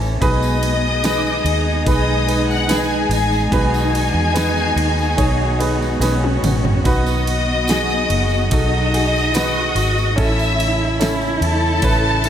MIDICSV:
0, 0, Header, 1, 7, 480
1, 0, Start_track
1, 0, Tempo, 828729
1, 125, Time_signature, 4, 2, 24, 8
1, 7119, End_track
2, 0, Start_track
2, 0, Title_t, "Violin section"
2, 0, Program_c, 0, 48
2, 124, Note_on_c, 0, 75, 94
2, 128, Note_on_c, 0, 87, 71
2, 1058, Note_off_c, 0, 75, 0
2, 1060, Note_off_c, 0, 87, 0
2, 1093, Note_on_c, 0, 75, 89
2, 1097, Note_on_c, 0, 87, 74
2, 1423, Note_off_c, 0, 75, 0
2, 1425, Note_off_c, 0, 87, 0
2, 1453, Note_on_c, 0, 78, 95
2, 1456, Note_on_c, 0, 90, 77
2, 1566, Note_off_c, 0, 78, 0
2, 1568, Note_off_c, 0, 90, 0
2, 1575, Note_on_c, 0, 80, 91
2, 1576, Note_on_c, 0, 68, 80
2, 1805, Note_off_c, 0, 80, 0
2, 1807, Note_off_c, 0, 68, 0
2, 1812, Note_on_c, 0, 80, 100
2, 1814, Note_on_c, 0, 68, 74
2, 2029, Note_off_c, 0, 80, 0
2, 2030, Note_off_c, 0, 68, 0
2, 2049, Note_on_c, 0, 68, 76
2, 2053, Note_on_c, 0, 80, 103
2, 3466, Note_off_c, 0, 68, 0
2, 3468, Note_off_c, 0, 80, 0
2, 3972, Note_on_c, 0, 75, 91
2, 3977, Note_on_c, 0, 87, 71
2, 4912, Note_off_c, 0, 75, 0
2, 4914, Note_off_c, 0, 87, 0
2, 4946, Note_on_c, 0, 75, 97
2, 4947, Note_on_c, 0, 87, 81
2, 5874, Note_off_c, 0, 75, 0
2, 5875, Note_off_c, 0, 87, 0
2, 5907, Note_on_c, 0, 88, 82
2, 5911, Note_on_c, 0, 76, 100
2, 6356, Note_off_c, 0, 88, 0
2, 6358, Note_off_c, 0, 76, 0
2, 6623, Note_on_c, 0, 81, 118
2, 6628, Note_on_c, 0, 69, 90
2, 7119, Note_off_c, 0, 69, 0
2, 7119, Note_off_c, 0, 81, 0
2, 7119, End_track
3, 0, Start_track
3, 0, Title_t, "Grand piano"
3, 0, Program_c, 1, 0
3, 0, Control_c, 1, 64, 127
3, 0, Note_on_c, 1, 52, 90
3, 0, Note_on_c, 1, 64, 67
3, 0, Note_on_c, 1, 69, 79
3, 0, Note_on_c, 1, 73, 98
3, 0, Note_on_c, 1, 76, 75
3, 104, Note_off_c, 1, 52, 0
3, 106, Note_off_c, 1, 69, 0
3, 108, Note_off_c, 1, 73, 0
3, 120, Note_on_c, 1, 63, 96
3, 126, Note_on_c, 1, 47, 64
3, 126, Note_on_c, 1, 71, 105
3, 127, Note_on_c, 1, 68, 84
3, 132, Control_c, 1, 64, 0
3, 134, Note_off_c, 1, 76, 0
3, 137, Note_off_c, 1, 64, 0
3, 237, Control_c, 1, 64, 127
3, 576, Note_off_c, 1, 63, 0
3, 579, Note_off_c, 1, 68, 0
3, 579, Note_off_c, 1, 71, 0
3, 599, Note_on_c, 1, 63, 78
3, 603, Note_on_c, 1, 68, 68
3, 605, Note_on_c, 1, 71, 81
3, 820, Note_off_c, 1, 47, 0
3, 1056, Note_off_c, 1, 63, 0
3, 1058, Note_off_c, 1, 68, 0
3, 1059, Note_off_c, 1, 71, 0
3, 1075, Note_on_c, 1, 63, 76
3, 1079, Note_on_c, 1, 68, 67
3, 1084, Note_on_c, 1, 71, 85
3, 1303, Note_off_c, 1, 63, 0
3, 1306, Note_off_c, 1, 68, 0
3, 1310, Note_off_c, 1, 71, 0
3, 1312, Note_on_c, 1, 63, 65
3, 1315, Note_on_c, 1, 68, 56
3, 1320, Note_on_c, 1, 71, 72
3, 1541, Note_off_c, 1, 63, 0
3, 1544, Note_off_c, 1, 68, 0
3, 1547, Note_off_c, 1, 71, 0
3, 1550, Note_on_c, 1, 63, 70
3, 1553, Note_on_c, 1, 68, 65
3, 1558, Note_on_c, 1, 71, 77
3, 2010, Note_off_c, 1, 63, 0
3, 2011, Note_off_c, 1, 68, 0
3, 2014, Note_off_c, 1, 71, 0
3, 2038, Note_on_c, 1, 63, 87
3, 2040, Note_on_c, 1, 47, 64
3, 2043, Note_on_c, 1, 68, 81
3, 2044, Note_on_c, 1, 71, 99
3, 2494, Note_off_c, 1, 63, 0
3, 2497, Note_off_c, 1, 68, 0
3, 2498, Note_off_c, 1, 71, 0
3, 2510, Note_on_c, 1, 63, 74
3, 2511, Note_on_c, 1, 68, 66
3, 2513, Note_on_c, 1, 71, 77
3, 2737, Note_off_c, 1, 47, 0
3, 2972, Note_off_c, 1, 63, 0
3, 2972, Note_off_c, 1, 68, 0
3, 2973, Note_off_c, 1, 71, 0
3, 2995, Note_on_c, 1, 63, 83
3, 2997, Note_on_c, 1, 68, 81
3, 3000, Note_on_c, 1, 73, 89
3, 3227, Note_off_c, 1, 63, 0
3, 3228, Note_off_c, 1, 68, 0
3, 3230, Note_off_c, 1, 73, 0
3, 3236, Note_on_c, 1, 63, 77
3, 3239, Note_on_c, 1, 68, 68
3, 3240, Note_on_c, 1, 71, 80
3, 3469, Note_off_c, 1, 63, 0
3, 3471, Note_off_c, 1, 68, 0
3, 3471, Note_off_c, 1, 71, 0
3, 3482, Note_on_c, 1, 63, 83
3, 3482, Note_on_c, 1, 68, 71
3, 3486, Note_on_c, 1, 71, 86
3, 3943, Note_off_c, 1, 63, 0
3, 3943, Note_off_c, 1, 68, 0
3, 3945, Note_off_c, 1, 71, 0
3, 3964, Note_on_c, 1, 63, 83
3, 3967, Note_on_c, 1, 66, 80
3, 3974, Note_on_c, 1, 71, 89
3, 3976, Control_c, 1, 64, 0
3, 4077, Control_c, 1, 64, 127
3, 4424, Note_off_c, 1, 63, 0
3, 4426, Note_off_c, 1, 66, 0
3, 4430, Note_off_c, 1, 71, 0
3, 4449, Note_on_c, 1, 63, 66
3, 4452, Note_on_c, 1, 66, 62
3, 4455, Note_on_c, 1, 68, 80
3, 4908, Note_off_c, 1, 63, 0
3, 4909, Note_off_c, 1, 66, 0
3, 4911, Note_off_c, 1, 68, 0
3, 4934, Note_on_c, 1, 63, 72
3, 4938, Note_on_c, 1, 66, 65
3, 4940, Note_on_c, 1, 69, 76
3, 5160, Note_off_c, 1, 63, 0
3, 5164, Note_off_c, 1, 66, 0
3, 5165, Note_off_c, 1, 69, 0
3, 5169, Note_on_c, 1, 63, 62
3, 5174, Note_on_c, 1, 66, 59
3, 5178, Note_on_c, 1, 68, 70
3, 5398, Note_off_c, 1, 63, 0
3, 5401, Note_off_c, 1, 66, 0
3, 5403, Note_off_c, 1, 68, 0
3, 5408, Note_on_c, 1, 63, 71
3, 5411, Note_on_c, 1, 71, 79
3, 5412, Note_on_c, 1, 66, 66
3, 5865, Note_off_c, 1, 63, 0
3, 5866, Note_off_c, 1, 71, 0
3, 5867, Note_off_c, 1, 66, 0
3, 5885, Note_on_c, 1, 61, 92
3, 5892, Note_on_c, 1, 64, 82
3, 5896, Note_on_c, 1, 69, 105
3, 5899, Control_c, 1, 64, 0
3, 5999, Control_c, 1, 64, 127
3, 6343, Note_off_c, 1, 61, 0
3, 6347, Note_off_c, 1, 64, 0
3, 6349, Note_off_c, 1, 69, 0
3, 6368, Note_on_c, 1, 61, 79
3, 6370, Note_on_c, 1, 64, 66
3, 6372, Note_on_c, 1, 69, 79
3, 6823, Note_off_c, 1, 61, 0
3, 6824, Note_off_c, 1, 64, 0
3, 6824, Note_off_c, 1, 69, 0
3, 6852, Note_on_c, 1, 61, 77
3, 6855, Note_on_c, 1, 64, 68
3, 6858, Note_on_c, 1, 71, 89
3, 7075, Note_off_c, 1, 61, 0
3, 7077, Note_off_c, 1, 64, 0
3, 7078, Note_off_c, 1, 71, 0
3, 7088, Note_on_c, 1, 61, 65
3, 7089, Note_on_c, 1, 64, 65
3, 7095, Note_on_c, 1, 69, 77
3, 7119, Note_off_c, 1, 61, 0
3, 7119, Note_off_c, 1, 64, 0
3, 7119, Note_off_c, 1, 69, 0
3, 7119, End_track
4, 0, Start_track
4, 0, Title_t, "Cello section"
4, 0, Program_c, 2, 48
4, 0, Note_on_c, 2, 61, 86
4, 114, Note_off_c, 2, 61, 0
4, 131, Note_on_c, 2, 59, 99
4, 605, Note_off_c, 2, 59, 0
4, 610, Note_on_c, 2, 63, 111
4, 3465, Note_off_c, 2, 63, 0
4, 3489, Note_on_c, 2, 61, 91
4, 3971, Note_off_c, 2, 61, 0
4, 3975, Note_on_c, 2, 59, 98
4, 4936, Note_off_c, 2, 59, 0
4, 4936, Note_on_c, 2, 63, 105
4, 5414, Note_off_c, 2, 63, 0
4, 5421, Note_on_c, 2, 66, 106
4, 5895, Note_off_c, 2, 66, 0
4, 5897, Note_on_c, 2, 64, 119
4, 7119, Note_off_c, 2, 64, 0
4, 7119, End_track
5, 0, Start_track
5, 0, Title_t, "String section"
5, 0, Program_c, 3, 48
5, 0, Note_on_c, 3, 49, 74
5, 0, Note_on_c, 3, 52, 72
5, 0, Note_on_c, 3, 57, 66
5, 0, Note_on_c, 3, 61, 83
5, 109, Note_off_c, 3, 49, 0
5, 109, Note_off_c, 3, 61, 0
5, 111, Note_off_c, 3, 52, 0
5, 111, Note_off_c, 3, 57, 0
5, 120, Note_on_c, 3, 56, 74
5, 120, Note_on_c, 3, 68, 83
5, 121, Note_on_c, 3, 59, 71
5, 124, Note_on_c, 3, 51, 76
5, 2017, Note_off_c, 3, 68, 0
5, 2047, Note_on_c, 3, 66, 83
5, 3943, Note_off_c, 3, 56, 0
5, 3964, Note_on_c, 3, 54, 65
5, 5866, Note_off_c, 3, 59, 0
5, 5867, Note_off_c, 3, 51, 0
5, 5870, Note_off_c, 3, 54, 0
5, 5872, Note_off_c, 3, 66, 0
5, 5896, Note_on_c, 3, 57, 67
5, 5896, Note_on_c, 3, 64, 77
5, 5898, Note_on_c, 3, 52, 64
5, 5899, Note_on_c, 3, 49, 76
5, 7119, Note_off_c, 3, 49, 0
5, 7119, Note_off_c, 3, 52, 0
5, 7119, Note_off_c, 3, 57, 0
5, 7119, Note_off_c, 3, 64, 0
5, 7119, End_track
6, 0, Start_track
6, 0, Title_t, "Fingered electric bass"
6, 0, Program_c, 4, 33
6, 0, Note_on_c, 4, 33, 91
6, 104, Note_off_c, 4, 33, 0
6, 123, Note_on_c, 4, 35, 111
6, 818, Note_off_c, 4, 35, 0
6, 836, Note_on_c, 4, 39, 97
6, 1061, Note_off_c, 4, 39, 0
6, 1078, Note_on_c, 4, 35, 93
6, 1774, Note_off_c, 4, 35, 0
6, 1792, Note_on_c, 4, 33, 85
6, 2018, Note_off_c, 4, 33, 0
6, 2036, Note_on_c, 4, 35, 106
6, 2374, Note_off_c, 4, 35, 0
6, 2395, Note_on_c, 4, 40, 80
6, 2734, Note_off_c, 4, 40, 0
6, 2759, Note_on_c, 4, 39, 97
6, 2983, Note_off_c, 4, 39, 0
6, 2998, Note_on_c, 4, 35, 90
6, 3460, Note_off_c, 4, 35, 0
6, 3477, Note_on_c, 4, 35, 92
6, 3706, Note_off_c, 4, 35, 0
6, 3722, Note_on_c, 4, 33, 80
6, 3949, Note_off_c, 4, 33, 0
6, 3967, Note_on_c, 4, 35, 104
6, 4669, Note_off_c, 4, 35, 0
6, 4690, Note_on_c, 4, 30, 89
6, 4915, Note_off_c, 4, 30, 0
6, 4931, Note_on_c, 4, 35, 97
6, 5627, Note_off_c, 4, 35, 0
6, 5648, Note_on_c, 4, 32, 91
6, 5872, Note_off_c, 4, 32, 0
6, 5895, Note_on_c, 4, 33, 109
6, 6588, Note_off_c, 4, 33, 0
6, 6609, Note_on_c, 4, 40, 92
6, 6831, Note_off_c, 4, 40, 0
6, 6846, Note_on_c, 4, 33, 94
6, 7119, Note_off_c, 4, 33, 0
6, 7119, End_track
7, 0, Start_track
7, 0, Title_t, "Drums"
7, 8, Note_on_c, 9, 54, 34
7, 66, Note_off_c, 9, 54, 0
7, 126, Note_on_c, 9, 36, 104
7, 127, Note_on_c, 9, 51, 69
7, 130, Note_on_c, 9, 54, 36
7, 184, Note_off_c, 9, 36, 0
7, 185, Note_off_c, 9, 51, 0
7, 188, Note_off_c, 9, 54, 0
7, 246, Note_on_c, 9, 54, 52
7, 304, Note_off_c, 9, 54, 0
7, 363, Note_on_c, 9, 51, 55
7, 370, Note_on_c, 9, 54, 47
7, 421, Note_off_c, 9, 51, 0
7, 428, Note_off_c, 9, 54, 0
7, 601, Note_on_c, 9, 51, 72
7, 606, Note_on_c, 9, 54, 84
7, 609, Note_on_c, 9, 38, 110
7, 659, Note_off_c, 9, 51, 0
7, 664, Note_off_c, 9, 54, 0
7, 667, Note_off_c, 9, 38, 0
7, 731, Note_on_c, 9, 54, 31
7, 789, Note_off_c, 9, 54, 0
7, 844, Note_on_c, 9, 51, 56
7, 902, Note_off_c, 9, 51, 0
7, 1080, Note_on_c, 9, 36, 92
7, 1081, Note_on_c, 9, 51, 75
7, 1084, Note_on_c, 9, 54, 43
7, 1138, Note_off_c, 9, 36, 0
7, 1139, Note_off_c, 9, 51, 0
7, 1141, Note_off_c, 9, 54, 0
7, 1324, Note_on_c, 9, 51, 52
7, 1331, Note_on_c, 9, 54, 47
7, 1382, Note_off_c, 9, 51, 0
7, 1389, Note_off_c, 9, 54, 0
7, 1452, Note_on_c, 9, 54, 31
7, 1510, Note_off_c, 9, 54, 0
7, 1559, Note_on_c, 9, 51, 75
7, 1559, Note_on_c, 9, 54, 88
7, 1570, Note_on_c, 9, 38, 122
7, 1616, Note_off_c, 9, 51, 0
7, 1616, Note_off_c, 9, 54, 0
7, 1627, Note_off_c, 9, 38, 0
7, 1801, Note_on_c, 9, 51, 64
7, 1804, Note_on_c, 9, 54, 57
7, 1859, Note_off_c, 9, 51, 0
7, 1862, Note_off_c, 9, 54, 0
7, 1925, Note_on_c, 9, 54, 34
7, 1982, Note_off_c, 9, 54, 0
7, 2040, Note_on_c, 9, 36, 106
7, 2043, Note_on_c, 9, 51, 70
7, 2047, Note_on_c, 9, 54, 37
7, 2098, Note_off_c, 9, 36, 0
7, 2101, Note_off_c, 9, 51, 0
7, 2105, Note_off_c, 9, 54, 0
7, 2165, Note_on_c, 9, 54, 50
7, 2223, Note_off_c, 9, 54, 0
7, 2288, Note_on_c, 9, 51, 53
7, 2298, Note_on_c, 9, 54, 46
7, 2346, Note_off_c, 9, 51, 0
7, 2355, Note_off_c, 9, 54, 0
7, 2523, Note_on_c, 9, 51, 73
7, 2525, Note_on_c, 9, 54, 81
7, 2531, Note_on_c, 9, 38, 104
7, 2581, Note_off_c, 9, 51, 0
7, 2583, Note_off_c, 9, 54, 0
7, 2589, Note_off_c, 9, 38, 0
7, 2648, Note_on_c, 9, 54, 30
7, 2706, Note_off_c, 9, 54, 0
7, 2766, Note_on_c, 9, 51, 54
7, 2824, Note_off_c, 9, 51, 0
7, 2889, Note_on_c, 9, 54, 30
7, 2947, Note_off_c, 9, 54, 0
7, 3001, Note_on_c, 9, 36, 94
7, 3002, Note_on_c, 9, 51, 77
7, 3011, Note_on_c, 9, 54, 41
7, 3059, Note_off_c, 9, 36, 0
7, 3060, Note_off_c, 9, 51, 0
7, 3069, Note_off_c, 9, 54, 0
7, 3246, Note_on_c, 9, 51, 57
7, 3254, Note_on_c, 9, 54, 46
7, 3304, Note_off_c, 9, 51, 0
7, 3312, Note_off_c, 9, 54, 0
7, 3373, Note_on_c, 9, 54, 31
7, 3431, Note_off_c, 9, 54, 0
7, 3483, Note_on_c, 9, 54, 94
7, 3486, Note_on_c, 9, 51, 75
7, 3496, Note_on_c, 9, 38, 58
7, 3541, Note_off_c, 9, 54, 0
7, 3544, Note_off_c, 9, 51, 0
7, 3554, Note_off_c, 9, 38, 0
7, 3614, Note_on_c, 9, 48, 67
7, 3672, Note_off_c, 9, 48, 0
7, 3729, Note_on_c, 9, 51, 62
7, 3730, Note_on_c, 9, 45, 96
7, 3733, Note_on_c, 9, 54, 58
7, 3787, Note_off_c, 9, 51, 0
7, 3788, Note_off_c, 9, 45, 0
7, 3791, Note_off_c, 9, 54, 0
7, 3851, Note_on_c, 9, 43, 91
7, 3909, Note_off_c, 9, 43, 0
7, 3969, Note_on_c, 9, 51, 68
7, 3970, Note_on_c, 9, 36, 100
7, 3976, Note_on_c, 9, 54, 37
7, 4027, Note_off_c, 9, 51, 0
7, 4028, Note_off_c, 9, 36, 0
7, 4034, Note_off_c, 9, 54, 0
7, 4092, Note_on_c, 9, 54, 50
7, 4150, Note_off_c, 9, 54, 0
7, 4213, Note_on_c, 9, 51, 57
7, 4217, Note_on_c, 9, 54, 47
7, 4271, Note_off_c, 9, 51, 0
7, 4275, Note_off_c, 9, 54, 0
7, 4446, Note_on_c, 9, 54, 84
7, 4454, Note_on_c, 9, 51, 70
7, 4462, Note_on_c, 9, 38, 99
7, 4504, Note_off_c, 9, 54, 0
7, 4512, Note_off_c, 9, 51, 0
7, 4520, Note_off_c, 9, 38, 0
7, 4574, Note_on_c, 9, 54, 29
7, 4632, Note_off_c, 9, 54, 0
7, 4692, Note_on_c, 9, 51, 54
7, 4750, Note_off_c, 9, 51, 0
7, 4807, Note_on_c, 9, 54, 29
7, 4865, Note_off_c, 9, 54, 0
7, 4930, Note_on_c, 9, 51, 79
7, 4932, Note_on_c, 9, 54, 41
7, 4933, Note_on_c, 9, 36, 92
7, 4988, Note_off_c, 9, 51, 0
7, 4990, Note_off_c, 9, 54, 0
7, 4991, Note_off_c, 9, 36, 0
7, 5179, Note_on_c, 9, 51, 59
7, 5180, Note_on_c, 9, 54, 44
7, 5237, Note_off_c, 9, 51, 0
7, 5238, Note_off_c, 9, 54, 0
7, 5305, Note_on_c, 9, 54, 33
7, 5362, Note_off_c, 9, 54, 0
7, 5410, Note_on_c, 9, 54, 88
7, 5414, Note_on_c, 9, 51, 77
7, 5425, Note_on_c, 9, 38, 115
7, 5468, Note_off_c, 9, 54, 0
7, 5472, Note_off_c, 9, 51, 0
7, 5483, Note_off_c, 9, 38, 0
7, 5652, Note_on_c, 9, 51, 64
7, 5660, Note_on_c, 9, 54, 57
7, 5710, Note_off_c, 9, 51, 0
7, 5718, Note_off_c, 9, 54, 0
7, 5779, Note_on_c, 9, 54, 31
7, 5837, Note_off_c, 9, 54, 0
7, 5896, Note_on_c, 9, 36, 104
7, 5896, Note_on_c, 9, 51, 73
7, 5903, Note_on_c, 9, 54, 35
7, 5954, Note_off_c, 9, 36, 0
7, 5954, Note_off_c, 9, 51, 0
7, 5961, Note_off_c, 9, 54, 0
7, 6019, Note_on_c, 9, 54, 52
7, 6077, Note_off_c, 9, 54, 0
7, 6139, Note_on_c, 9, 51, 56
7, 6139, Note_on_c, 9, 54, 47
7, 6197, Note_off_c, 9, 51, 0
7, 6197, Note_off_c, 9, 54, 0
7, 6375, Note_on_c, 9, 51, 69
7, 6375, Note_on_c, 9, 54, 87
7, 6383, Note_on_c, 9, 38, 109
7, 6433, Note_off_c, 9, 51, 0
7, 6433, Note_off_c, 9, 54, 0
7, 6441, Note_off_c, 9, 38, 0
7, 6496, Note_on_c, 9, 54, 31
7, 6554, Note_off_c, 9, 54, 0
7, 6615, Note_on_c, 9, 51, 56
7, 6673, Note_off_c, 9, 51, 0
7, 6847, Note_on_c, 9, 51, 74
7, 6847, Note_on_c, 9, 54, 44
7, 6849, Note_on_c, 9, 36, 92
7, 6905, Note_off_c, 9, 51, 0
7, 6905, Note_off_c, 9, 54, 0
7, 6907, Note_off_c, 9, 36, 0
7, 7089, Note_on_c, 9, 51, 54
7, 7096, Note_on_c, 9, 54, 43
7, 7119, Note_off_c, 9, 51, 0
7, 7119, Note_off_c, 9, 54, 0
7, 7119, End_track
0, 0, End_of_file